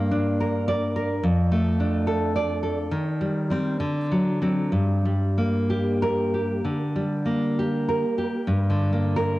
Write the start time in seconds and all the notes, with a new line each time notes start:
Already playing: G2 A#3
0.11 D4
0.40 A#4
0.68 D5
0.96 A#4
1.23 F2
1.52 A3
1.80 D4
2.07 A4
2.36 D5
2.63 A4
2.91 D#3
3.21 G3
3.50 G3 C4
3.80 D3
4.12 F#3
4.42 F#3 C4
4.72 G2
5.05 G3
5.38 A#3
5.70 G4
6.02 A#4
6.34 G4
6.64 D3
6.96 G3
7.25 A#3
7.59 G4
7.89 A#4
8.18 G4
8.47 G2
8.70 D3
8.93 A#3
9.16 A#4